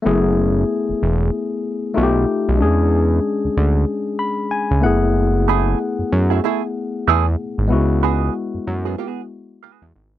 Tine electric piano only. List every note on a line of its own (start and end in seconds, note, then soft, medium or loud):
0.02 1.91 A3 medium
0.02 1.91 B3 medium
0.02 1.92 E4 medium
0.07 1.93 G#4 medium
1.94 2.58 A3 medium
1.94 2.59 D#4 medium
1.94 2.59 F4 medium
1.94 2.03 F#4 medium
2.03 2.63 G4 medium
2.57 4.77 G#3 medium
2.57 4.78 C#4 medium
2.57 4.79 D4 medium
2.62 4.80 G#4 medium
4.19 4.48 B5 medium
4.51 4.80 G#5 medium
4.81 7.33 A3 medium
4.81 7.34 B3 medium
4.81 7.34 E4 medium
4.81 5.13 F#5 medium
4.86 7.35 G#4 medium
7.68 10.19 G#3 medium
7.68 10.19 B3 medium
7.68 10.19 E4 medium
7.72 10.19 F#4 medium